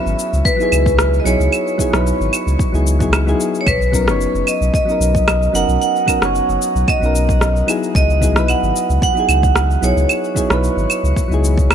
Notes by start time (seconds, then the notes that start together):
Already playing: F#3 B3 C#4 E4 B4 E5
0.06 G#1, cabasa
0.19 cabasa
0.33 C#2, cabasa
0.45 B4, kick, cabasa
0.56 F#3 B3 D#4
0.61 E4 G#4, cabasa
0.72 C#2, cabasa, claves
0.86 kick, cabasa
0.99 cross-stick, cabasa
1.14 cabasa
1.20 D#5
1.24 B1 F#3 B3 D#4 E4 G#4 C#5, cabasa
1.40 C#2, cabasa
1.52 cabasa, claves
1.68 cabasa
1.78 F#3 B3 D#4 E4 G#4, kick, cabasa
1.91 B1 F#3 B3 D#4, cross-stick, cabasa
1.95 E4 B4
2.07 cabasa
2.20 G#1, cabasa
2.33 cabasa, claves
2.47 C#2, cabasa
2.59 kick, cabasa
2.72 C#2 F#3 B3 D#4 E4 G#4, cabasa
2.87 cabasa
2.99 F#3 B3 D#4 E4 G#4, kick, cabasa
3.13 cross-stick, cabasa, claves
3.26 F#3 B3 D#4 E4 G#4, cabasa
3.40 cabasa
3.55 cabasa
3.61 C#5
3.66 B1 B4, kick, cabasa, claves
3.82 cabasa
3.92 F#3 B3 C#4 D#4 A#4, kick, cabasa
4.05 F#1 F#3 B3 C#4, cross-stick, cabasa
4.09 D#4 C#5
4.21 cabasa
4.34 F#1, cabasa
4.47 D#5, cabasa, claves
4.61 B1, cabasa
4.74 D#5, kick, cabasa
4.85 F#3 B3 C#4, cabasa
4.90 D#4 A#4
5.00 B1, cabasa
5.15 kick, cabasa
5.28 cross-stick, cabasa, claves
5.42 cabasa
5.53 F#1 F#3 B3 C#4 D#4 A#4 F#5, cabasa
5.68 B1, cabasa
5.82 F#5, cabasa
5.96 cabasa
6.06 F#3 B3 C#4 D#4 A#4, kick, cabasa, claves
6.19 F#1 F#3 B3 C#4, cross-stick, cabasa
6.24 D#4 C#5
6.35 cabasa
6.49 F#1, cabasa
6.62 cabasa
6.75 B1, cabasa
6.88 D#5, kick, cabasa, claves
7.00 B1 F#3 B3 C#4, cabasa
7.04 D#4 A#4
7.15 cabasa
7.29 kick, cabasa
7.41 cross-stick, cabasa
7.56 cabasa
7.67 F#3 B3 D#4 E4 G#4, cabasa, claves
7.83 cabasa
7.95 C#2 D#5, kick, cabasa
8.10 cabasa
8.20 F#3 B3 D#4 E4 G#4, kick, cabasa
8.33 B1 F#3 B3 D#4, cross-stick, cabasa
8.38 E4 B4
8.48 F#5, cabasa, claves
8.63 G#1, cabasa
8.76 cabasa
8.90 C#2, cabasa
9.02 F#5, kick, cabasa
9.14 F#3 B3 D#4, cabasa
9.18 E4 G#4
9.29 C#2, cabasa, claves
9.43 kick, cabasa
9.56 cross-stick, cabasa
9.71 cabasa
9.81 B1 F#3 B3 D#4 E4 G#4 C#5, cabasa
9.97 C#2, cabasa
10.09 cabasa, claves
10.24 cabasa
10.34 F#3 B3 D#4 E4 G#4, kick, cabasa
10.47 B1 F#3 B3 D#4, cross-stick, cabasa
10.52 E4 B4
10.64 cabasa
10.77 G#1, cabasa
10.90 cabasa, claves
11.03 C#2, cabasa
11.16 kick, cabasa
11.28 C#2 F#3 B3 D#4, cabasa
11.32 E4 G#4
11.44 cabasa
11.57 kick, cabasa
11.71 cross-stick, cabasa, claves